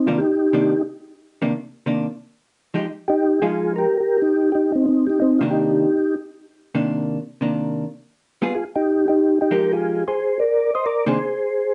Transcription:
0.06 hollow-body jazz guitar C3 D#3 A#3 D4, tonewheel organ D4 F4
0.18 tonewheel organ D#4 G4
0.53 hollow-body jazz guitar C3 D#3 A#3 D4
1.42 hollow-body jazz guitar C3 D#3 A#3 D4
1.86 hollow-body jazz guitar C3 D#3 A#3 D4
2.74 hollow-body jazz guitar F3 G#3 D#4 G4
3.08 tonewheel organ D#4 G4
3.42 hollow-body jazz guitar F3 G#3 D#4, tonewheel organ F4 G#4
3.76 tonewheel organ G4 A#4
3.97 tonewheel organ G4 A#4
4.18 tonewheel organ D#4 G4
4.52 tonewheel organ D#4 G4
4.72 tonewheel organ C4 D#4
4.86 tonewheel organ C4 D#4
5.07 tonewheel organ D#4 G4
5.20 tonewheel organ C4 D#4
5.39 hollow-body jazz guitar C3 D#3 A#3 D4, tonewheel organ D4 F4
5.51 tonewheel organ D#4 G4
6.75 hollow-body jazz guitar C3 D#3 A#3 D4
7.41 hollow-body jazz guitar C3 D#3 A#3 D4
8.42 hollow-body jazz guitar G3 B3 F4 G#4
8.55 tonewheel organ F4 G#4
8.76 tonewheel organ D#4 G4
9.08 tonewheel organ D#4 G4
9.41 tonewheel organ D#4 G4
9.51 hollow-body jazz guitar F3 G#3 D#4 G4, tonewheel organ G4 A#4
9.73 tonewheel organ F4 G#4
10.08 tonewheel organ G#4 C5
10.39 tonewheel organ A#4 D5
10.75 tonewheel organ C5 D#5
10.86 tonewheel organ A#4 D5
11.06 hollow-body jazz guitar C3 D#3 A#3 D4, tonewheel organ G#4 C5

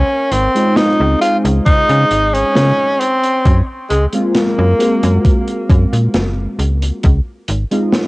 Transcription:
Already playing: tenor saxophone C#4
0.32 fm bass G#1, tenor saxophone C4, closed hi-hat
0.55 synth keys G#3 C4 D#4 F4, closed hi-hat
0.76 tenor saxophone D#4, snare, closed hi-hat
1.00 fm bass C#2
1.20 synth keys G#3 D#4 G#4 C5, tenor saxophone F4, closed hi-hat
1.45 fm bass C#2, closed hi-hat
1.66 fm bass C#3, tenor saxophone D#4, kick, closed hi-hat
1.89 fm bass C#3, closed hi-hat
2.11 fm bass G#1, closed hi-hat
2.33 tenor saxophone C#4, closed hi-hat
2.55 fm bass C#3, snare, closed hi-hat
3.00 tenor saxophone C4, closed hi-hat
3.23 closed hi-hat
3.45 fm bass F#2, kick, closed hi-hat
3.90 fm bass C#2, tenor saxophone G#3, closed hi-hat
4.12 synth keys G#3 A#3 C4 F4, closed hi-hat
4.34 tenor saxophone A#3, snare, closed hi-hat
4.59 fm bass F#2
4.78 synth keys G#3 A#3 C4 F#4, closed hi-hat
5.03 fm bass F#2, closed hi-hat
5.25 kick, closed hi-hat
5.48 closed hi-hat
5.70 fm bass F#2, kick, closed hi-hat
5.93 fm bass A#2, closed hi-hat
6.14 fm bass F#1, snare, closed hi-hat
6.59 fm bass C#2, closed hi-hat
6.82 closed hi-hat
7.03 fm bass C#2, kick, closed hi-hat
7.48 fm bass G#1, closed hi-hat
7.71 synth keys G#3 C4 D#4 F4, closed hi-hat
7.92 snare, closed hi-hat

